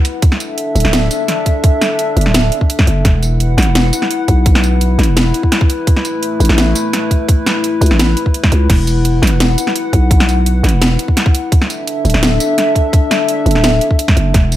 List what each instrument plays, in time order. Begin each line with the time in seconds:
Already playing: analog synth pad E4 B4 F#5
0.05 closed hi-hat
0.22 analog synth pad D4 A4 E5, kick, closed hi-hat
0.32 snare
0.40 closed hi-hat, tambourine
0.58 closed hi-hat
0.75 808-style bass D1, closed hi-hat, tambourine
0.80 closed hi-hat
0.84 808-style bass D1, snare
0.93 snare, closed hi-hat
1.11 closed hi-hat, tambourine
1.28 snare, closed hi-hat
1.46 kick, closed hi-hat
1.64 kick, closed hi-hat
1.81 snare, closed hi-hat, tambourine
1.99 closed hi-hat
2.17 808-style bass F#1, closed hi-hat
2.21 closed hi-hat
2.26 808-style bass D1, snare
2.34 snare, closed hi-hat, tambourine
2.52 closed hi-hat
2.61 kick
2.70 closed hi-hat
2.79 kick, snare
2.87 808-style bass F#1, closed hi-hat
3.05 808-style bass E1, analog synth pad E4 B4 F#5, kick, snare, closed hi-hat
3.23 closed hi-hat, tambourine
3.40 closed hi-hat
3.58 808-style bass A1, snare, closed hi-hat, tambourine
3.62 closed hi-hat
3.67 808-style bass E1
3.75 snare, closed hi-hat
3.93 closed hi-hat, tambourine
4.02 snare
4.11 closed hi-hat
4.28 808-style bass B1, kick, closed hi-hat
4.46 kick, closed hi-hat
4.55 snare
4.64 closed hi-hat, tambourine
4.81 closed hi-hat
4.99 808-style bass A1, snare, closed hi-hat
5.03 closed hi-hat
5.08 808-style bass E1
5.17 snare, closed hi-hat, tambourine
5.34 closed hi-hat
5.43 kick
5.52 snare, closed hi-hat
5.61 kick
5.70 closed hi-hat
5.87 analog synth pad A3, kick, closed hi-hat
5.97 snare
6.05 closed hi-hat, tambourine
6.23 closed hi-hat
6.40 808-style bass A1, closed hi-hat, tambourine
6.45 closed hi-hat
6.49 808-style bass A1, snare
6.58 snare, closed hi-hat
6.75 closed hi-hat, tambourine
6.93 snare, closed hi-hat
7.11 kick, closed hi-hat
7.29 kick, closed hi-hat
7.46 snare, closed hi-hat, tambourine
7.64 closed hi-hat
7.81 808-style bass C#2, closed hi-hat, tambourine
7.86 closed hi-hat
7.91 808-style bass A1, snare
7.99 snare, closed hi-hat, tambourine
8.17 closed hi-hat
8.26 kick
8.34 closed hi-hat
8.44 kick, snare
8.52 808-style bass C#2, closed hi-hat
8.69 808-style bass E1, analog synth pad F#5, kick, snare, closed hi-hat, crash
8.87 closed hi-hat, tambourine
9.05 closed hi-hat
9.22 808-style bass A1, snare, closed hi-hat, tambourine
9.27 closed hi-hat
9.31 808-style bass E1
9.40 snare, closed hi-hat
9.58 closed hi-hat, tambourine
9.67 snare
9.76 closed hi-hat
9.93 808-style bass B1, kick, closed hi-hat
10.11 kick, closed hi-hat
10.20 snare
10.29 closed hi-hat, tambourine
10.46 closed hi-hat
10.63 808-style bass A1, snare, closed hi-hat
10.69 closed hi-hat
10.73 808-style bass E1
10.82 snare, closed hi-hat, tambourine
10.99 closed hi-hat
11.08 kick
11.17 snare, closed hi-hat
11.26 kick
11.35 closed hi-hat
11.52 analog synth pad D4 A4 E5, kick, closed hi-hat
11.62 snare
11.70 closed hi-hat, tambourine
11.87 closed hi-hat
12.05 808-style bass D1, closed hi-hat, tambourine
12.10 closed hi-hat
12.14 808-style bass D1, snare
12.23 snare, closed hi-hat
12.40 closed hi-hat, tambourine
12.58 snare, closed hi-hat
12.75 kick, closed hi-hat
12.93 kick, closed hi-hat
13.11 snare, closed hi-hat, tambourine
13.29 closed hi-hat
13.46 808-style bass F#1, closed hi-hat
13.51 closed hi-hat
13.55 808-style bass D1, snare
13.64 snare, closed hi-hat, tambourine
13.81 closed hi-hat
13.91 kick
13.99 closed hi-hat
14.08 kick, snare
14.17 808-style bass F#1, closed hi-hat
14.34 808-style bass E1, analog synth pad E4 B4 F#5, kick, snare, closed hi-hat
14.52 closed hi-hat, tambourine